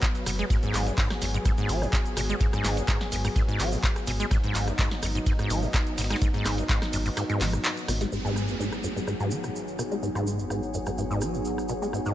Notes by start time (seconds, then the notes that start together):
Already playing: F#3 B3 B4
0.03 kick, snare, clap, closed hi-hat, ride, shaker
0.15 snare, closed hi-hat, shaker
0.26 F#1 B2, cross-stick, open hi-hat, ride, shaker
0.39 G#3, closed hi-hat, ride, shaker
0.50 G#2 G#4, kick, closed hi-hat, ride, shaker
0.62 G#2, closed hi-hat, shaker
0.74 G#1, cross-stick, snare, clap, open hi-hat, ride, shaker
0.87 F#2, snare, closed hi-hat, shaker
0.98 G#2, kick, snare, clap, closed hi-hat, open hi-hat, shaker
1.10 cross-stick, snare, closed hi-hat, shaker
1.22 G#1 F#2, open hi-hat, ride, shaker
1.34 G#2, closed hi-hat, shaker
1.45 G#2, kick, cross-stick, closed hi-hat, ride, shaker
1.57 G#2, closed hi-hat, shaker
1.69 G#1 F#3, open hi-hat, ride, shaker
1.82 F#2, cross-stick, shaker
1.93 kick, snare, clap, closed hi-hat, ride, shaker
2.06 closed hi-hat, shaker
2.17 G#1 B2, cross-stick, open hi-hat, ride, shaker
2.29 G#3, closed hi-hat, shaker
2.40 G#2, kick, closed hi-hat, ride, shaker
2.53 G#2, cross-stick, snare, closed hi-hat, shaker
2.64 G#1, snare, clap, open hi-hat, ride, shaker
2.77 F#2, closed hi-hat, ride, shaker
2.88 G#2, kick, cross-stick, snare, clap, closed hi-hat, ride, shaker
3.01 snare, closed hi-hat, shaker
3.12 G#1 F#2, open hi-hat, ride, shaker
3.24 G#2, cross-stick, open hi-hat, shaker
3.36 G#2, kick, closed hi-hat, ride, shaker
3.48 G#2, closed hi-hat, shaker
3.60 G#1 F#3, cross-stick, clap, open hi-hat, ride, shaker
3.72 F#2, shaker
3.84 kick, snare, clap, closed hi-hat, ride, shaker
3.96 cross-stick, snare, closed hi-hat, shaker
4.07 G#1 B2, open hi-hat, ride, shaker
4.20 G#3, closed hi-hat, ride, shaker
4.31 G#2 D#4, kick, cross-stick, closed hi-hat, ride, shaker
4.44 G#2, closed hi-hat, shaker
4.55 G#1, snare, clap, open hi-hat, ride, shaker
4.67 F#2, cross-stick, snare, closed hi-hat, shaker
4.79 G#2, kick, snare, clap, closed hi-hat, open hi-hat, shaker
4.91 snare, closed hi-hat, shaker
5.02 G#1 F#2, cross-stick, open hi-hat, ride, shaker
5.15 G#2, closed hi-hat, shaker
5.26 G#2, kick, closed hi-hat, ride, shaker
5.39 G#2, cross-stick, closed hi-hat, shaker
5.50 G#1 F#3, open hi-hat, ride, shaker
5.62 F#2, shaker
5.74 kick, cross-stick, snare, clap, closed hi-hat, ride, shaker
5.87 closed hi-hat, shaker
5.98 G#1 B2, snare, open hi-hat, shaker
6.04 snare, open hi-hat
6.10 G#3, cross-stick, snare, closed hi-hat, open hi-hat, shaker
6.16 snare, open hi-hat
6.22 G#2, kick, closed hi-hat, ride, shaker
6.34 G#2, snare, closed hi-hat, shaker
6.45 G#1, cross-stick, snare, clap, open hi-hat, ride, shaker
6.58 F#2, closed hi-hat, ride, shaker
6.69 G#2, kick, snare, clap, closed hi-hat, ride, shaker
6.82 cross-stick, snare, closed hi-hat, shaker
6.93 G#1 F#2, open hi-hat, ride, shaker
7.06 G#2, open hi-hat, shaker
7.17 G#2, cross-stick, closed hi-hat, ride, shaker
7.30 G#2, closed hi-hat, shaker
7.41 G#1 F#3, snare, clap, open hi-hat, shaker
7.53 F#2, cross-stick, closed hi-hat, shaker
7.64 snare, clap, closed hi-hat, open hi-hat, shaker
7.77 closed hi-hat, shaker
7.88 G#1 B2, cross-stick, open hi-hat, ride, shaker
8.01 G#3, snare, closed hi-hat, ride, shaker
8.12 G#1 G#2 F#3 B3 D#4 G#4, downlifter, shaker
8.25 G#2, shaker
8.36 F#5, cross-stick, shaker
8.48 F#2, shaker
8.55 G#4
8.60 G#2, shaker
8.72 cross-stick, shaker
8.84 F#2, shaker
8.92 C#5
8.96 G#2, shaker
9.07 G#2, cross-stick, shaker
9.20 G#2, shaker
9.31 F#3, shaker
9.44 F#2, cross-stick, shaker
9.56 shaker
9.68 shaker
9.79 B2, cross-stick, shaker
9.91 G#3, shaker
10.03 G#2, shaker
10.15 G#2, cross-stick, shaker
10.27 shaker
10.39 F#2, shaker
10.50 G#2, cross-stick, shaker
10.63 shaker
10.74 F#2, shaker
10.86 G#2, cross-stick, shaker
10.98 G#2, shaker
11.11 G#2, shaker
11.21 F#3, cross-stick, shaker
11.34 F#2, shaker
11.45 shaker
11.58 cross-stick, shaker
11.69 B2, shaker
11.82 G#3, shaker
11.93 G#2, cross-stick, shaker
12.06 G#2, shaker